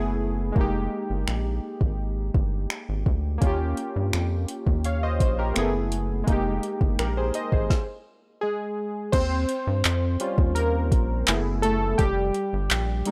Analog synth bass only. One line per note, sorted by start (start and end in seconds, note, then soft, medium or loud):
0.00 0.52 F#1 loud
0.56 0.88 F1 loud
1.10 1.26 G1 medium
1.28 1.60 A#1 loud
1.81 2.31 G#1 medium
2.35 2.67 G1 loud
2.89 3.05 G#1 medium
3.06 3.39 D2 medium
3.42 3.74 D#2 loud
3.96 4.12 G2 medium
4.14 4.46 F2 loud
4.67 5.22 D#2 medium
5.21 5.53 A#1 loud
5.57 6.24 F#1 loud
6.28 6.60 F1 loud
6.81 6.97 G1 medium
6.99 7.31 A#1 loud
7.53 7.69 G#1 medium
9.13 9.46 D#2 loud
9.67 9.83 G2 medium
9.85 10.17 F2 loud
10.38 10.93 D#2 loud
10.92 11.24 A#1 loud
11.28 11.95 F#1 loud
11.99 12.31 F1 loud
12.53 12.69 G1 loud
12.71 13.03 A#1 loud